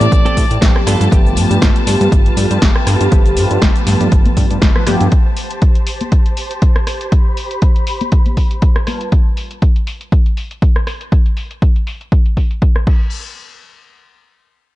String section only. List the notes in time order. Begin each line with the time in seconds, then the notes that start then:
Already playing: C4 G4 A5
0.87 F4 B4
5.12 G4 C5
7.12 B5
8.87 G3 F4 B4 A5